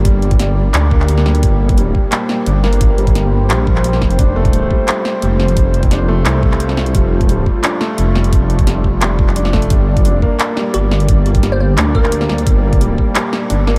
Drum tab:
HH |x-xxx---x---x--x|x--xx---x---x--x|x-xxx---x---x--x|x--xx---x---x--x|
CP |--------x--x----|--------x-------|--------x--x----|--------x-------|
SD |----o--------oo-|----------o---o-|----o--------oo-|----------o---o-|
BD |o--o------o-----|o--o--o---------|o--o------o---o-|o--o--o---------|

HH |x-xxx---x---x--x|x--xx---x---x--x|x-xxx---x---x--x|x--xx---x---x--x|
CP |--------x--x----|--------x-------|--------x--x----|--------x-------|
SD |----o--------oo-|----------o---o-|----o--------oo-|----------o---o-|
BD |o--o------o-----|o--o--o---------|o--o--o---o---o-|o--o--o---------|

HH |x-xxx---x---x--x|x--xx---x---x---|
CP |--------x--x----|--------x-------|
SD |----o--------oo-|----------o---o-|
BD |o--o------o-----|o--o--o---------|